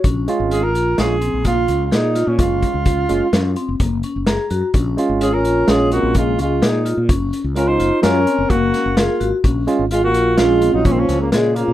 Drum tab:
HH |xxxxxxxxxx|xxxxxxxxxx|xxxxxxxxxx|xxxxxxxxxx|
SD |----o-o-oo|----o---o-|----o---o-|----o--oo-|
BD |o-----o---|ooo---o---|o-----o---|o-----o---|

HH |xxxxxxxxxx|
SD |----o--oo-|
BD |o-----o---|